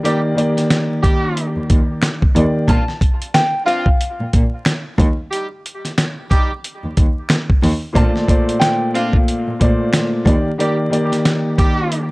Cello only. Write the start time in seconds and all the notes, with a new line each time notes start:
1.56 D#2
1.70 D#2
2.35 D#2
2.68 A#2
4.20 A#2
4.34 A#2
4.98 D#2
6.84 D#2
6.97 D#2
7.63 D#2
7.96 A#2
9.47 A#2
9.61 A#2
10.26 D#2